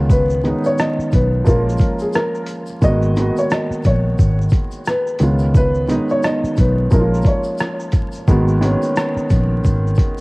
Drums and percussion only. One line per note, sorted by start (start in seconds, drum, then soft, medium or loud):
0.10 kick loud
0.10 shaker medium
0.30 shaker soft
0.44 closed hi-hat medium
0.44 shaker soft
0.44 shaker medium
0.64 shaker soft
0.65 shaker medium
0.78 cross-stick loud
0.78 shaker medium
1.00 shaker soft
1.12 kick medium
1.12 closed hi-hat medium
1.12 shaker soft
1.46 kick medium
1.46 shaker medium
1.48 shaker medium
1.69 shaker medium
1.77 kick medium
1.77 closed hi-hat medium
1.77 shaker soft
1.81 shaker soft
1.99 shaker soft
2.13 cross-stick loud
2.13 shaker medium
2.35 shaker soft
2.47 closed hi-hat medium
2.47 shaker soft
2.48 shaker soft
2.67 shaker medium
2.82 kick loud
2.82 shaker medium
3.02 shaker soft
3.16 closed hi-hat medium
3.16 shaker soft
3.37 shaker soft
3.50 cross-stick loud
3.50 shaker medium
3.72 shaker soft
3.84 kick medium
3.84 closed hi-hat medium
3.84 shaker soft
4.18 kick medium
4.18 shaker medium
4.41 shaker soft
4.49 kick medium
4.49 closed hi-hat medium
4.49 shaker soft
4.53 shaker soft
4.71 shaker medium
4.71 shaker soft
4.85 cross-stick loud
4.85 shaker medium
5.07 shaker soft
5.19 closed hi-hat medium
5.19 shaker soft
5.21 shaker soft
5.39 shaker soft
5.55 kick loud
5.55 shaker medium
5.75 shaker soft
5.89 closed hi-hat medium
5.89 shaker soft
5.89 shaker medium
6.09 shaker soft
6.10 shaker soft
6.23 cross-stick loud
6.23 shaker medium
6.45 shaker soft
6.56 kick medium
6.56 closed hi-hat medium
6.56 shaker medium
6.56 shaker soft
6.91 kick medium
6.91 shaker medium
6.93 shaker medium
7.14 shaker soft
7.22 kick medium
7.22 shaker soft
7.26 closed hi-hat medium
7.26 shaker soft
7.44 shaker soft
7.58 cross-stick loud
7.58 shaker medium
7.80 shaker medium
7.92 kick medium
7.92 closed hi-hat medium
7.92 shaker soft
7.94 shaker soft
8.12 shaker medium
8.14 shaker soft
8.28 kick loud
8.28 shaker medium
8.48 shaker soft
8.62 closed hi-hat medium
8.62 shaker soft
8.82 shaker soft
8.96 cross-stick loud
8.96 shaker medium
9.17 shaker soft
9.30 kick medium
9.30 closed hi-hat medium
9.30 shaker medium
9.64 kick medium
9.64 shaker medium
9.87 shaker soft
9.95 kick medium
9.95 closed hi-hat medium
9.95 shaker soft
9.99 shaker soft
10.18 shaker soft